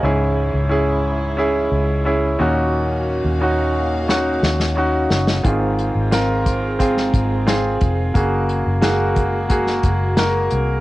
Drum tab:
HH |----------------|----------------|x-x-x-x-x-x-x-x-|x-x-x-x-x-x-x-x-|
SD |----------------|--------o-oo--oo|----o----o--o---|----o----o--o---|
BD |----------------|----------------|o-----o-o-o---o-|o-----o-o-o-----|